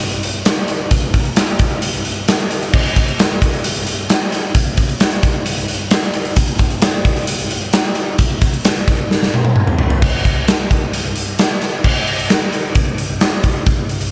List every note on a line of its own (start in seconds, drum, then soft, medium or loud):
0.00 closed hi-hat loud
0.11 closed hi-hat soft
0.23 closed hi-hat medium
0.45 snare loud
0.45 closed hi-hat loud
0.68 closed hi-hat medium
0.91 kick loud
0.91 closed hi-hat loud
1.14 kick medium
1.14 closed hi-hat medium
1.25 closed hi-hat soft
1.36 snare loud
1.36 closed hi-hat loud
1.48 closed hi-hat soft
1.59 kick loud
1.59 closed hi-hat medium
1.82 closed hi-hat loud
1.93 closed hi-hat soft
2.05 closed hi-hat medium
2.28 snare loud
2.28 closed hi-hat medium
2.39 closed hi-hat soft
2.51 closed hi-hat medium
2.63 closed hi-hat medium
2.74 kick loud
2.74 crash loud
2.86 closed hi-hat soft
2.96 kick medium
2.96 closed hi-hat medium
3.08 closed hi-hat soft
3.19 snare loud
3.19 closed hi-hat loud
3.42 kick medium
3.42 closed hi-hat medium
3.54 closed hi-hat soft
3.64 closed hi-hat loud
3.76 closed hi-hat soft
3.87 closed hi-hat medium
4.10 snare loud
4.10 closed hi-hat loud
4.32 snare soft
4.32 closed hi-hat medium
4.55 kick loud
4.55 closed hi-hat loud
4.77 kick medium
4.77 closed hi-hat medium
4.89 closed hi-hat soft
5.00 snare loud
5.00 closed hi-hat loud
5.12 closed hi-hat medium
5.23 kick medium
5.23 closed hi-hat medium
5.46 closed hi-hat loud
5.57 closed hi-hat soft
5.68 closed hi-hat medium
5.91 snare loud
5.91 closed hi-hat loud
6.03 closed hi-hat soft
6.14 closed hi-hat medium
6.25 closed hi-hat soft
6.36 kick loud
6.36 closed hi-hat loud
6.48 closed hi-hat soft
6.59 kick medium
6.59 closed hi-hat medium
6.70 closed hi-hat soft
6.82 snare loud
6.82 closed hi-hat loud
7.05 kick medium
7.05 closed hi-hat medium
7.16 closed hi-hat soft
7.27 closed hi-hat loud
7.39 closed hi-hat medium
7.51 closed hi-hat medium
7.73 snare loud
7.73 closed hi-hat loud
7.95 closed hi-hat medium
8.19 kick loud
8.19 closed hi-hat loud
8.41 kick medium
8.41 closed hi-hat medium
8.54 closed hi-hat medium
8.65 snare loud
8.65 closed hi-hat loud
8.77 closed hi-hat medium
8.88 kick medium
8.88 closed hi-hat medium
9.11 snare medium
9.23 snare medium
9.34 high tom medium
9.45 high tom medium
9.56 mid tom medium
9.67 mid tom medium
9.79 floor tom loud
9.90 floor tom loud
10.02 kick loud
10.02 crash loud
10.25 kick medium
10.25 closed hi-hat medium
10.48 snare loud
10.48 closed hi-hat medium
10.71 kick medium
10.71 closed hi-hat medium
10.93 closed hi-hat medium
11.16 closed hi-hat medium
11.39 snare loud
11.39 closed hi-hat medium
11.62 snare soft
11.62 closed hi-hat medium
11.84 kick loud
11.84 crash loud
12.07 closed hi-hat medium
12.19 closed hi-hat medium
12.30 snare loud
12.30 closed hi-hat medium
12.52 closed hi-hat medium
12.75 kick loud
12.75 closed hi-hat medium
12.98 closed hi-hat medium
13.21 snare loud
13.21 closed hi-hat medium
13.43 kick medium
13.43 closed hi-hat medium
13.66 kick loud
13.66 closed hi-hat medium
13.89 closed hi-hat medium
14.01 closed hi-hat medium